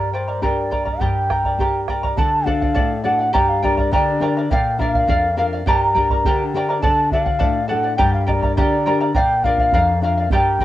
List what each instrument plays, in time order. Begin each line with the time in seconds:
Already playing: nylon-string guitar G2, charango G4 A#4 D5 G5 A#5, quena D5
0.13 charango A#4 D5 G5 A#5, quena C5
0.28 charango A#4 D5 A#5
0.42 nylon-string guitar D4 G4 A#4, charango G4 A#4 D5 G5 A#5, quena D5, bombo low
0.71 charango A#4 D5 G5 A#5, bombo low
0.85 charango A#4 D5 A#5, bombo low
1.00 nylon-string guitar G2, charango G4 A#4 D5 G5 A#5, quena G5, bombo low
1.30 charango A#4 D5 G5 A#5, bombo rim, bombo low
1.44 charango A#4 D5 A#5, bombo low
1.58 nylon-string guitar D4 G4 A#4, charango G4 A#4 D5 G5 A#5, bombo low
1.88 charango A#4 D5 G5 A#5, bombo rim, bombo low
2.03 charango A#4 D5 A#5, bombo low
2.17 nylon-string guitar D3, charango A4 D5 F#5, quena A5, bombo low
2.46 nylon-string guitar D4 F#4 A4, charango A4 D5 F#5, quena F5, bombo low
2.62 charango D5 F#5, bombo low
2.75 nylon-string guitar A2, charango A4 D5 F#5, bombo low
3.04 nylon-string guitar D4 F#4 A4, charango A4 D5 F#5, quena F#5
3.19 charango D5 F#5
3.33 nylon-string guitar G2, charango G4 A#4 D5 G5 A#5, quena G5, bombo low
3.49 quena F5
3.62 nylon-string guitar D4 G4 A#4, charango A#4 D5 G5 A#5, quena D5, bombo low
3.77 charango A#4 D5 A#5, bombo low
3.92 nylon-string guitar D3, charango G4 A#4 D5 G5 A#5, quena D5, bombo low
4.20 nylon-string guitar D4 G4 A#4, charango A#4 D5 G5 A#5
4.37 charango A#4 D5 A#5
4.51 nylon-string guitar A#2, charango A#4 D5 F5, quena G5, bombo low
4.79 nylon-string guitar D4 F4 A#4, charango A#4 D5 F5, quena F5, bombo low
4.94 charango D5 F5, bombo low
5.07 nylon-string guitar F2, charango A#4 D5 F5, bombo low
5.37 nylon-string guitar D4 F4 A#4, charango A#4 D5 F5, quena F5
5.53 charango D5 F5
5.66 nylon-string guitar G2, charango G4 A#4 D5 G5 A#5, quena A#5, bombo low
5.95 nylon-string guitar D4 G4 A#4, charango A#4 D5 G5 A#5, bombo low
6.10 charango A#4 D5 A#5, bombo low
6.25 nylon-string guitar D3, charango G4 A#4 D5 G5 A#5, bombo low
6.54 nylon-string guitar D4 G4 A#4, charango A#4 D5 G5 A#5
6.69 charango A#4 D5 A#5
6.82 nylon-string guitar D3, charango A4 D5 F#5, quena A5, bombo low
7.11 nylon-string guitar D4 F#4 A4, charango A4 D5 F#5, quena F5, bombo low
7.25 charango D5 F#5, bombo low
7.39 nylon-string guitar A2, charango A4 D5 F#5, bombo low
7.68 nylon-string guitar D4 F#4 A4, charango A4 D5 F#5, quena F#5
7.83 charango D5 F#5
7.97 nylon-string guitar G2, charango G4 A#4 D5 G5 A#5, quena G5, bombo low
8.14 quena F5
8.27 nylon-string guitar D4 G4 A#4, charango A#4 D5 G5 A#5, quena D#5, bombo low
8.32 quena D5
8.42 charango A#4 D5 A#5, bombo low
8.56 nylon-string guitar D3, charango G4 A#4 D5 G5 A#5, quena D5, bombo low
8.86 nylon-string guitar D4 G4 A#4, charango A#4 D5 G5 A#5
9.00 charango A#4 D5 A#5
9.14 nylon-string guitar A#2, charango A#4 D5 F5, quena G5, bombo low
9.44 nylon-string guitar D4 F4 A#4, charango A#4 D5 F5, quena F5, bombo low
9.58 charango D5 F5, bombo low
9.72 nylon-string guitar F2, charango A#4 D5 F5, bombo low
10.02 nylon-string guitar D4 F4 A#4, charango A#4 D5 F5, quena F5
10.18 charango D5 F5
10.30 nylon-string guitar G2, charango G4 A#4 D5 G5 A#5, quena G5, bombo low
10.59 nylon-string guitar D4 G4 A#4, charango A#4 D5 G5 A#5, bombo low